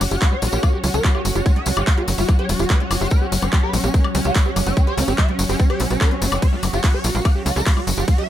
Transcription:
Already playing: F#3 C#4 F#4 C#5 F#5
0.01 F#1 G3, open hi-hat, tambourine, high woodblock
0.11 F#1 F#4 G4, closed hi-hat, tambourine
0.21 F#3 F#4, kick, clap, closed hi-hat, tambourine
0.32 G3 C#5
0.42 A#1 F#3 F#4, open hi-hat, tambourine
0.52 A#1 A#3 F#4 G4, closed hi-hat, tambourine
0.63 G3 A#3 F#4, kick, closed hi-hat, tambourine, high woodblock
0.73 G4
0.83 C#2 F#3 F#4, open hi-hat, tambourine
0.94 C#2 G3 A#4, closed hi-hat, tambourine
1.04 F#3 F#4, kick, clap, closed hi-hat, tambourine
1.15 F#4 G4, high woodblock
1.25 F#1 G3, open hi-hat, tambourine
1.35 F#1 F#4 G4, closed hi-hat, tambourine
1.46 F#3 F#4, kick, closed hi-hat, tambourine
1.56 G3 E5, closed hi-hat
1.66 C#2 F#3 F#4, open hi-hat, tambourine
1.76 G1 F#4 G4, closed hi-hat, tambourine, high woodblock
1.87 G3 F#5, kick, clap, closed hi-hat, tambourine
1.98 A#3 F#4 G4, closed hi-hat
2.08 F#1 F#3, open hi-hat, tambourine
2.18 F#1 G3 E4 F#4, open hi-hat, tambourine
2.28 F#3 F#4, kick, closed hi-hat, tambourine, high woodblock
2.39 G4 C#5, closed hi-hat
2.49 E1 G3 F#4, open hi-hat, tambourine
2.59 E1 F#4 G4, closed hi-hat, tambourine
2.70 F#3 B4, kick, clap, closed hi-hat, tambourine
2.80 G3 F#4, closed hi-hat
2.91 F#1 F#3 F#4, open hi-hat, tambourine, high woodblock
3.01 F#1 F#4 G4, closed hi-hat, tambourine
3.10 G3 B4, kick, closed hi-hat, tambourine
3.22 C#4 G4
3.32 F#1 F#3, open hi-hat, tambourine
3.42 F#1 G3 C#4, closed hi-hat, tambourine, high woodblock
3.53 F#3 C#4, kick, clap, closed hi-hat, tambourine
3.63 G4 B4
3.73 A#1 G3 C#4, open hi-hat, tambourine
3.84 A#1 A#3 C#4 G4, closed hi-hat, tambourine
3.94 F#3 A#3 C#4, kick, closed hi-hat, tambourine
4.04 G3, high woodblock
4.15 C#2 F#3 C#4, open hi-hat, tambourine
4.24 C#2 F#4 G4, tambourine
4.35 G3 C#4, kick, clap, closed hi-hat, tambourine
4.46 C#4 G4
4.56 F#1 F#3, open hi-hat, tambourine, high woodblock
4.66 F#1 G3 C#4, closed hi-hat, tambourine
4.77 F#3 C#4, kick, closed hi-hat, tambourine
4.87 G4 C#5, closed hi-hat
4.98 C#2 G3 A#3 C#4, open hi-hat, tambourine
5.08 G1 C#4 G4, closed hi-hat, tambourine
5.18 F#3 E5, kick, clap, closed hi-hat, high woodblock
5.29 G3 C#4, closed hi-hat
5.39 F#1 F#3, open hi-hat, tambourine
5.49 F#1 C#4 G4, open hi-hat, tambourine
5.60 G3 C#4, kick, closed hi-hat, tambourine
5.70 G4 C#5, closed hi-hat, high woodblock
5.80 B1 G3 C#4, open hi-hat, tambourine
5.90 B1 C#4 F#4, closed hi-hat, tambourine
6.01 F#3 C#4 A#4, kick, clap, closed hi-hat, tambourine
6.11 F#3 C#4, closed hi-hat
6.22 F#1 F#3 C#4, open hi-hat, tambourine
6.32 F#1 F#3 C#4, closed hi-hat, tambourine, high woodblock
6.42 F#3 C#5, kick, closed hi-hat, ride, tambourine
6.53 G3 F#4
6.63 F#1 F#3, open hi-hat, tambourine, high woodblock
6.73 F#1 F#4 G4, closed hi-hat, tambourine
6.84 G3 F#4, kick, clap, closed hi-hat, ride, tambourine
6.94 G4 C#5
7.04 A#1 F#3 F#4, open hi-hat, tambourine
7.15 A#1 G3 A#3 F#4, closed hi-hat, tambourine
7.25 F#3 A#3 F#4, kick, closed hi-hat, ride, tambourine, high woodblock
7.35 G4
7.46 C#2 G3 F#4, open hi-hat, tambourine
7.56 C#2 G4 A#4, closed hi-hat, tambourine
7.66 F#3 F#4, kick, clap, closed hi-hat, ride
7.77 G3 F#4, high woodblock
7.87 F#1 F#3, open hi-hat, tambourine
7.97 F#1 F#4 G4, closed hi-hat, tambourine
8.08 G3 F#4, kick, closed hi-hat, ride, tambourine
8.18 G4 E5, closed hi-hat

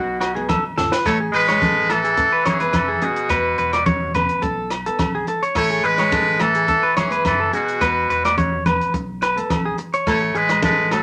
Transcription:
Already playing: B1 B2 C#4 F#4
0.21 F#4, cross-stick, closed hi-hat, low agogo
0.35 B3 G#4
0.49 A4, kick, cross-stick, high conga, low agogo
0.77 G#1 C#4 A4, snare, low conga
0.92 B4, snare
1.05 A1 A3 A4 C#5, kick, cross-stick, closed hi-hat, muted conga, low agogo
1.20 G#4
1.32 A1 G#3 B4, closed hi-hat, muted conga
1.48 G#3 C#5, cross-stick, closed hi-hat, low agogo
1.61 A4, kick, closed hi-hat, high conga
1.90 E3 A3 A4, cross-stick, closed hi-hat, low agogo
2.04 G#4, closed hi-hat
2.17 C#4 A4, kick, closed hi-hat, muted conga
2.32 B4
2.45 E3 G#4 C#5, cross-stick, closed hi-hat, high conga, low agogo
2.60 B3 B4, closed hi-hat
2.73 F1 E3 A4, kick, cross-stick, closed hi-hat, high conga, low agogo
2.88 G#4
3.01 B2 C#4 F#4 G#4, closed hi-hat
3.16 closed hi-hat
3.29 E1 B3 B4, kick, cross-stick, closed hi-hat, muted conga, low agogo
3.58 E1 B4, closed hi-hat, muted conga
3.73 D5, muted steel-string acoustic guitar stroke, cross-stick, closed hi-hat, low agogo
3.86 C#5, kick, closed hi-hat, high conga
4.14 B3 B4, closed hi-hat, muted conga, high conga, low conga, low agogo
4.29 closed hi-hat
4.42 B1 C#4 A4, kick, closed hi-hat, muted conga
4.70 cross-stick, closed hi-hat, low agogo
4.86 B3 A4, closed hi-hat
4.99 B1, kick, cross-stick, closed hi-hat, high conga, low agogo
5.15 G#4
5.27 D4 A4, closed hi-hat
5.43 C#5, closed hi-hat
5.55 A1 A3 A4 C#5, kick, cross-stick, closed hi-hat, muted conga, low agogo
5.70 G#4
5.84 A1 G#3 B4, closed hi-hat, muted conga
5.98 G#3 C#5, cross-stick, closed hi-hat, low agogo
6.12 A4, kick, closed hi-hat, high conga
6.39 E3 A3 A4, cross-stick, closed hi-hat, muted conga, low agogo
6.55 G#4, closed hi-hat
6.68 C#4 A4, kick, closed hi-hat, muted conga
6.83 B4
6.97 E3 G#4 C#5, cross-stick, closed hi-hat, high conga, low agogo
7.10 B3 B4, closed hi-hat
7.25 F#1 E3 A4, kick, cross-stick, closed hi-hat, high conga, low agogo
7.40 A4
7.53 B2 C#4 F#4 G#4, closed hi-hat
7.68 closed hi-hat
7.81 E1 B3 B4, kick, cross-stick, closed hi-hat, muted conga, low agogo
8.09 E1 B4, closed hi-hat, muted conga
8.25 A3 D5, cross-stick, closed hi-hat, low agogo
8.38 C#5, kick, closed hi-hat, high conga
8.66 B3 B4, closed hi-hat, muted conga, high conga, low conga, low agogo
8.81 closed hi-hat
8.94 B1 C#4, muted clean electric guitar stroke, kick, closed hi-hat, muted conga
9.22 B4, cross-stick, closed hi-hat, low agogo
9.37 B3 A4, closed hi-hat
9.50 B1, kick, cross-stick, closed hi-hat, high conga, low agogo
9.65 G#4
9.78 D4, muted clean electric guitar stroke, closed hi-hat
9.93 C#5, closed hi-hat
10.07 A1 A3 A4 C#5, kick, cross-stick, closed hi-hat, muted conga, low agogo
10.22 muted clean electric guitar stroke
10.35 A1 G#3 G#4 B4, closed hi-hat, muted conga
10.49 G#3, muted clean electric guitar stroke, cross-stick, closed hi-hat, low agogo
10.63 G#3 A4 B4, kick, closed hi-hat, high conga
10.91 F#3 A3 A4, cross-stick, closed hi-hat, muted conga, low agogo

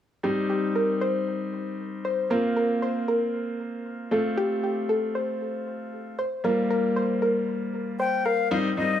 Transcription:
0.23 G3 C4 D#4 G4
0.50 G4
0.75 A#4
1.01 C5
2.05 C5
2.30 A#3 C4 F4 A#4
2.56 A#4
2.82 C5
3.08 A#4
4.11 A3 C4 F4 A4
4.37 G4
4.63 G4
4.89 A4
5.15 C5
6.19 C5
6.44 G3 A#3 F4 A#4
6.70 A#4
6.96 C5
7.22 A#4
8.00 C5 G5
8.25 A#4 F5
8.51 G3 C4 D#4 F5
8.77 G3 C4 D#4 D#5

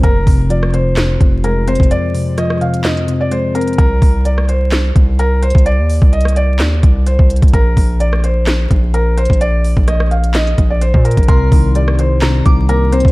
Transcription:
0.03 F1 F2 A#4, kick, closed hi-hat
0.27 F1 C3, kick, open hi-hat
0.50 F3 D5, closed hi-hat
0.63 cross-stick
0.73 C3 C5, closed hi-hat
0.97 F2, snare, clap, closed hi-hat
1.20 F1 C3, kick, closed hi-hat
1.44 G#3 A#4, closed hi-hat
1.67 C4 C5, closed hi-hat
1.75 closed hi-hat
1.80 F1, kick, closed hi-hat
1.91 F2 D5, closed hi-hat
2.14 C3, open hi-hat
2.38 F3 D#5, cross-stick, closed hi-hat
2.50 cross-stick
2.61 C3 F5, closed hi-hat
2.74 closed hi-hat
2.84 F2 D#5, snare, clap, closed hi-hat
2.97 closed hi-hat
3.08 C3, closed hi-hat
3.21 D5
3.31 G#3 C5, closed hi-hat
3.55 C4 A#4, closed hi-hat
3.61 closed hi-hat
3.67 closed hi-hat
3.73 closed hi-hat
3.78 C2 A#4, kick, closed hi-hat
4.02 C2, kick, open hi-hat
4.25 D5, closed hi-hat
4.38 cross-stick
4.49 C5, closed hi-hat
4.72 snare, clap, closed hi-hat
4.96 C2, kick, closed hi-hat
5.19 A#4, closed hi-hat
5.42 C5, closed hi-hat
5.50 closed hi-hat
5.55 C2, kick, closed hi-hat
5.66 D5, closed hi-hat
5.78 D#2
5.90 open hi-hat
6.02 C2, kick
6.13 D#5, closed hi-hat
6.21 closed hi-hat
6.25 cross-stick, closed hi-hat
6.36 D5, closed hi-hat
6.59 D#2, snare, clap, closed hi-hat
6.83 C2, kick, closed hi-hat
7.06 C5, closed hi-hat
7.19 C2, kick
7.30 closed hi-hat
7.36 closed hi-hat
7.42 C2, kick, closed hi-hat
7.48 closed hi-hat
7.53 A#1 A#4, kick, closed hi-hat
7.77 A#1, kick, open hi-hat
8.00 D5, closed hi-hat
8.13 cross-stick
8.24 C5, closed hi-hat
8.47 snare, clap, closed hi-hat
8.71 A#1, kick, closed hi-hat
8.94 A#4, closed hi-hat
9.17 C5, closed hi-hat
9.25 closed hi-hat
9.30 A#1, kick, closed hi-hat
9.41 D5, closed hi-hat
9.64 open hi-hat
9.77 A#1, kick
9.88 D#5, cross-stick, closed hi-hat
10.00 cross-stick
10.11 F5, closed hi-hat
10.24 closed hi-hat
10.34 D#5, snare, clap, closed hi-hat
10.47 closed hi-hat
10.58 A#1, kick, closed hi-hat
10.70 D5
10.81 C5, closed hi-hat
10.94 A#2, kick
11.05 A#4, closed hi-hat
11.11 closed hi-hat
11.17 A#1, kick, closed hi-hat
11.23 closed hi-hat
11.28 C2 C3 A#4 C6, kick, closed hi-hat
11.52 C2 D#3, kick, open hi-hat
11.75 G3 D5, closed hi-hat
11.88 cross-stick
11.99 D#3 C5, closed hi-hat
12.22 C3 A#5, snare, clap, closed hi-hat
12.45 C2 D#3 D6, kick, closed hi-hat
12.69 A#3 A#4, closed hi-hat
12.92 C4 C5, closed hi-hat
13.00 closed hi-hat
13.05 C2, kick, closed hi-hat

